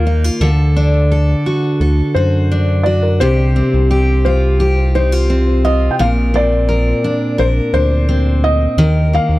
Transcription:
Already playing: D#2 D#3 A#3 A#4
0.07 D#4
0.24 F4
0.40 D2 D3 A4
0.77 D4
1.12 A4
1.46 F#4
1.80 D2 A4
2.15 F#2 F#4 C5
2.52 D4
2.83 F#4 D5
3.02 A#4
3.20 C2 C3 G4 C5
3.56 C4
3.74 C2
3.91 G4
4.25 F4 C5
4.60 G4
4.95 D#4 C5
5.12 F4
5.30 C4
5.65 F4 D#5
5.91 G5
5.99 A#1 A#2 A#4 F5
6.34 C4 D5
6.69 A#4
7.04 D4
7.38 A#1 A#4 C5
7.73 D2 D4 C5
8.09 C4
8.44 D#5
8.77 D#2 D#3 A#4
9.13 A#3 F5
9.29 D#2

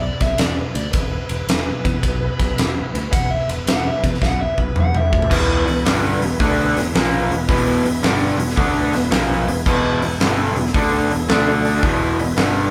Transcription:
Already playing: E4 G#4 B4
0.01 D5
0.21 B1 E5, kick, snare, ride
0.38 E1 D5, snare, ride
0.56 B4
0.74 D2 D5, ride
0.92 E1 B3 E4 G#4 B4, kick, ride
1.12 B4
1.29 E1, ride
1.47 E1, snare, ride
1.85 E2, kick, ride
2.03 B1, kick, ride
2.40 B1, kick, snare, ride
2.58 E1, snare, ride
2.94 D2, ride
3.12 E1 F#5, kick, ride
3.31 E5
3.48 E1 B4, ride
3.66 E1 F#5, snare, ride
3.88 E5
4.04 E2 B4, kick, ride
4.14 snare
4.22 B1 F#5, kick, snare
4.41 E5
4.58 B1 B4, kick
4.75 E1, mid tom
4.80 F#5
4.95 E5, mid tom
4.99 A3 B3
5.06 C4 D4
5.11 D2 E4 F4, kick
5.16 G4 A4
5.22 B4 C5, floor tom
5.28 E1 E2 B2 E3 B3 E4 G#4 B4 D5, kick, crash
5.67 E1 E2 B2, open hi-hat
5.85 G1 G2 D3 G3, snare, open hi-hat
6.21 E1 E2 B2, open hi-hat
6.40 D2 D3 A3 D4, kick, open hi-hat
6.75 E1 E2 B2, snare, open hi-hat
6.94 A#1 A#2 F3 A#3, snare, open hi-hat
7.30 E1 E2 B2, open hi-hat
7.48 E1 E2 B2 E3, kick, open hi-hat
7.84 E1 E2 B2, open hi-hat
8.02 G1 G2 D3 G3, snare, open hi-hat
8.38 E1 E2 B2, open hi-hat
8.49 snare
8.56 D2 D3 A3 D4, kick, open hi-hat
8.93 E1 E2 B2, snare, open hi-hat
9.11 A#1 A#2 F3 A#3, snare, open hi-hat
9.47 E1 E2 B2, open hi-hat
9.66 E1 E2 B2 E3 B3 E4 G#4, kick, crash
10.02 E1 E2 B2, open hi-hat
10.19 G1 G2 D3 G3, snare, open hi-hat
10.55 E1 E2 B2, open hi-hat
10.66 snare
10.74 D2 D3 A3 D4, kick, open hi-hat
11.10 E1 E2 B2, open hi-hat
11.28 D2 D3 A3 D4 A4 D5, snare, open hi-hat
11.65 open hi-hat
11.83 E1 E2 B2 E3 B3 E4 G#4 B4, kick, open hi-hat
12.19 E1 E2 B2, open hi-hat
12.37 G1 G2 D3 G3, snare, open hi-hat

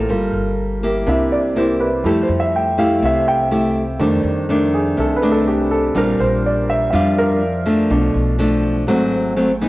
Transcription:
Already playing: F3 A#3 C4 E4 F4 G4 A4 A#4
0.09 G1 G3 A#3 F4
0.33 G1
0.83 A#3 E4 G4
1.06 C2 C3 A#3 D4 E4 E5
1.32 D5
1.56 A#3 E4 G4 C5
1.80 B4
2.03 F2 F3 G3 A3 E4 G4 A4
2.23 C5
2.29 F2
2.40 E5
2.56 G5
2.78 A3 E4 G4 F5
3.02 C2 C3 E5
3.28 G5
3.51 A3 E4 G4
3.99 F2 D#3 G3 A3 D4
4.24 F2
4.49 D#3 A3 D4
4.74 G#4
4.97 C2 C3 A4
5.16 B4
5.22 D#3 A3 D4
5.32 A4
5.48 G4
5.71 A4
5.95 A#1 A#2 G3 C4 D4 F4 A#4
6.19 A#1 C5
6.46 D5
6.70 E5
6.90 F2 F3 G3 D4 F4 E5
6.95 F5
7.18 A#4
7.66 F3 A3 D4
7.90 B1 B2 F3 A3 D4
8.14 B1
8.39 F3 A3 D4
8.87 G#1 G#2 F#3 A3 C4
9.36 F#3 A3 C4
9.61 E3 B3 D#4

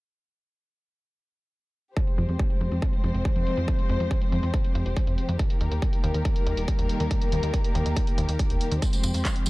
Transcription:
1.97 F3 G#3 C4 G4 C5, kick, closed hi-hat
2.07 closed hi-hat
2.18 F2, closed hi-hat
2.29 F2, closed hi-hat
2.39 kick, closed hi-hat
2.50 closed hi-hat
2.61 F2, closed hi-hat
2.72 F2, closed hi-hat
2.82 kick, closed hi-hat
2.93 closed hi-hat
3.04 F2, closed hi-hat
3.14 F1, closed hi-hat
3.25 kick, closed hi-hat
3.36 F2, closed hi-hat
3.47 closed hi-hat
3.57 F2, closed hi-hat
3.68 kick, closed hi-hat
3.79 closed hi-hat
3.89 F2, closed hi-hat
4.00 F2, closed hi-hat
4.11 kick, closed hi-hat
4.22 closed hi-hat
4.32 F2, closed hi-hat
4.43 F2, closed hi-hat
4.54 kick, closed hi-hat
4.64 closed hi-hat
4.75 F2, closed hi-hat
4.86 F1, closed hi-hat
4.97 kick, closed hi-hat
5.07 F2, closed hi-hat
5.18 closed hi-hat
5.29 F2, closed hi-hat
5.39 D#3 G3 A#3 A#4, kick, closed hi-hat
5.50 closed hi-hat
5.61 D#2, closed hi-hat
5.72 D#2, closed hi-hat
5.82 kick, closed hi-hat
5.93 closed hi-hat
6.04 D#2, closed hi-hat
6.14 D#2, closed hi-hat
6.25 kick, closed hi-hat
6.36 closed hi-hat
6.46 D#2, closed hi-hat
6.57 D#1, closed hi-hat
6.68 kick, closed hi-hat
6.79 D#2, closed hi-hat
6.89 closed hi-hat
7.00 D#2, closed hi-hat
7.11 kick, closed hi-hat
7.22 closed hi-hat
7.32 D#2, closed hi-hat
7.43 D#2, closed hi-hat
7.54 kick, closed hi-hat
7.64 closed hi-hat
7.75 D#2, closed hi-hat
7.86 D#2, closed hi-hat
7.97 kick, closed hi-hat
8.07 closed hi-hat
8.18 D#2, closed hi-hat
8.29 D#2, closed hi-hat
8.39 kick, closed hi-hat
8.50 D#1, closed hi-hat
8.61 closed hi-hat
8.71 D#2, closed hi-hat
8.82 F3 G#3 C4 C5, kick, closed hi-hat, tambourine
8.93 closed hi-hat, tambourine
9.03 F2, closed hi-hat, tambourine
9.14 F2, closed hi-hat, tambourine
9.25 kick, clap, closed hi-hat, tambourine
9.36 closed hi-hat
9.46 F2, closed hi-hat, tambourine

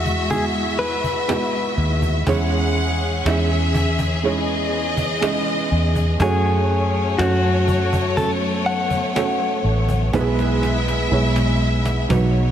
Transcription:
Already playing: E2 E3 G#3 B3 E4 F#4 G#4 E5
0.06 cajon bass
0.30 G#3 B3 E4 F#4 G#4, cajon bass
0.79 B4
1.04 cajon bass
1.28 G#3 B3 E4 F#4 G#4, cajon slap
1.78 D#2
2.02 cajon bass
2.27 E2 E3 G#3 C#4 E4 G#4 C#5 F#5, cajon bass
3.25 E2 G#3 C#4 E4 G#4 E5, cajon slap
3.74 cajon bass
3.99 cajon bass
4.23 G#3 B3 C#4 E4 G#4 C#5 D#5
4.97 cajon bass
5.21 G#3 C#4 E4 G#4 D#5, cajon slap
5.72 E2
5.95 cajon bass
6.20 F#2 F#3 A3 C#4 F#4 G#4 C#5, cajon bass
7.18 F#2 A3 C#4 F#4 A4 C#5, cajon slap
7.68 cajon bass
7.93 cajon bass
8.17 A3 B3 C#4 F#4 A4 C#5, cajon bass
8.66 F#5
8.90 cajon bass
9.15 A3 C#4 F#4 A4 C#5, cajon slap
9.64 A1
9.89 cajon bass
10.13 B1 B2 G#3 B3 E4 F#4 B4 E5, cajon bass, cajon slap
10.21 G#4
10.39 cajon slap
10.63 cajon slap
10.88 cajon slap
11.11 B1 G#3 B3 E4 G#4 C#5
11.36 cajon slap
11.86 cajon slap
12.09 B1 B2 F#3 B3 D#4 F#4 B4 C#5, cajon bass, cajon slap

